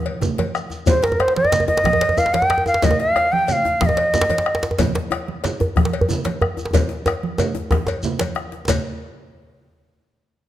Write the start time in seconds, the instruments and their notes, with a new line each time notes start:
0.05 cowbell, djembe slap
0.21 bombo rim, djembe slap, djembe tone, high conga, low conga, shekere
0.38 cowbell, djembe slap, high conga, djembe tone
0.55 bombo rim, djembe slap, shekere
0.70 bombo rim, djembe slap, djembe tone, shekere
0.86 bansuri C5, bombo low, cowbell, high conga, djembe bass, low conga, shekere
1.03 bansuri A#4, djembe slap
1.12 djembe tone
1.20 bansuri C5, bombo rim, cowbell, djembe tone, high conga
1.28 djembe slap
1.36 bansuri D#5, djembe slap, high conga
1.45 djembe tone
1.52 djembe slap, high conga, low conga, shekere
1.60 djembe tone
1.67 bansuri D#5, djembe slap, djembe tone, high conga
1.77 djembe slap
1.84 bombo rim, bombo low, djembe slap, high conga, djembe bass
1.93 djembe tone
2.01 bombo rim, cowbell, djembe slap
2.09 djembe tone
2.17 bansuri F5, bombo rim, djembe tone, shekere
2.26 djembe slap
2.34 bansuri G5, cowbell, djembe slap, high conga
2.42 djembe tone
2.50 bombo rim, djembe slap
2.58 djembe tone
2.66 bansuri F5, djembe tone, shekere
2.74 djembe slap
2.82 bansuri D#5, bombo low, cowbell, djembe slap, high conga, djembe bass, low conga, shekere
2.91 djembe tone
3.00 bansuri F5, djembe slap
3.16 bombo rim, cowbell, djembe tone, high conga
3.32 bansuri G5, djembe slap, high conga
3.47 bansuri G5, cowbell, high conga, low conga, shekere
3.52 bansuri F5
3.65 djembe slap, djembe tone, high conga
3.81 bansuri F5, bombo rim, bombo low, djembe slap, high conga, djembe bass
3.86 bansuri D#5, djembe tone
3.97 bombo rim, cowbell, djembe slap
3.99 djembe slap
4.14 bombo rim, djembe slap, djembe tone, low conga, shekere
4.21 djembe slap
4.30 cowbell, djembe slap, djembe tone, high conga
4.38 djembe slap
4.46 bombo rim, djembe slap
4.55 djembe slap
4.63 djembe slap, djembe tone, shekere
4.71 djembe tone
4.79 bombo low, cowbell, djembe slap, high conga, djembe bass, low conga, shekere
4.95 djembe slap
5.11 bombo rim, cowbell, djembe tone, high conga
5.27 djembe slap, high conga
5.44 cowbell, djembe slap, high conga, low conga, shekere
5.60 djembe slap, djembe tone, high conga, djembe bass
5.76 bombo rim, bombo low, djembe slap, high conga, djembe bass
5.85 djembe slap
5.92 bombo rim, cowbell, djembe slap
6.01 djembe bass
6.09 bombo rim, djembe tone, low conga, shekere
6.25 cowbell, djembe slap, high conga
6.41 bombo rim, djembe slap, djembe bass
6.57 djembe tone, shekere
6.65 djembe slap
6.73 bombo low, cowbell, djembe tone, high conga, djembe bass, low conga, shekere
6.89 bombo rim, djembe slap
7.06 bombo rim, cowbell, djembe tone, high conga, shekere
7.22 djembe slap, high conga
7.38 cowbell, djembe tone, low conga, shekere
7.55 djembe slap, djembe tone, high conga
7.71 bombo rim, bombo low, djembe slap, djembe tone, high conga, djembe bass
7.87 cowbell, djembe tone, shekere
8.03 high conga, djembe bass, low conga, shekere
8.19 bombo rim, cowbell, djembe slap, high conga, djembe bass, shekere
8.35 bombo rim, djembe slap, high conga
8.52 bombo rim, djembe slap
8.68 bombo low, cowbell, djembe slap, djembe bass, low conga, shekere